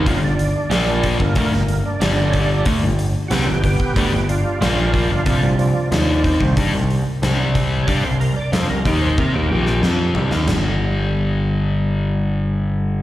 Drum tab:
CC |----------------|----------------|----------------|----------------|
HH |o-o-o-o-o-o-o-o-|o-o-o-o-o-o-o-o-|o-o-o-o-o-o-o-o-|o-o-o-o---------|
SD |----o----o--o---|----o-------o---|----o-------o---|----o------oo--o|
T1 |----------------|----------------|----------------|--------oo------|
FT |----------------|----------------|----------------|--------------o-|
BD |o-----ooo-----o-|o-----ooo-----o-|o-----ooo-----o-|o-----o-o-------|

CC |x---------------|
HH |----------------|
SD |o---------------|
T1 |----------------|
FT |----------------|
BD |----------------|